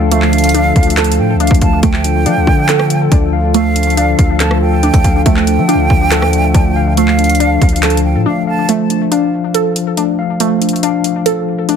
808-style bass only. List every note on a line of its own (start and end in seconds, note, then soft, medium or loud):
0.00 0.72 D2 loud
0.76 1.20 D2 loud
1.19 1.36 A2 loud
1.35 1.50 D2 loud
1.51 1.61 D2 loud
1.62 1.82 D2 loud
1.83 2.27 D2 loud
2.26 2.38 F3 loud
2.37 2.47 D2 loud
2.47 3.09 D3 loud
3.12 4.15 D2 loud
4.19 4.91 D2 loud
4.94 5.04 D2 loud
5.04 5.25 D2 loud
5.26 5.60 D2 loud
5.58 5.76 F3 loud
5.74 5.89 D2 loud
5.90 6.24 D2 loud
6.22 6.40 D#2 loud
6.38 6.54 D2 loud
6.54 7.58 D2 loud
7.62 8.17 D2 loud
8.15 8.26 A2 loud